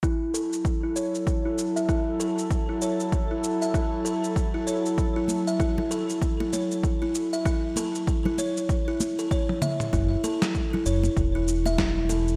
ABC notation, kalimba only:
X:1
M:4/4
L:1/16
Q:"Swing 16ths" 1/4=97
K:F#m
V:1 name="Kalimba"
E z A z2 E c z2 E z e E z A z | z E c z2 E z e E z A z2 E c z | z E z e E z A z2 E c z2 E z e | E z A z2 E c z2 E z A c z e z |
E z A z2 E c z2 E z e E z A z |]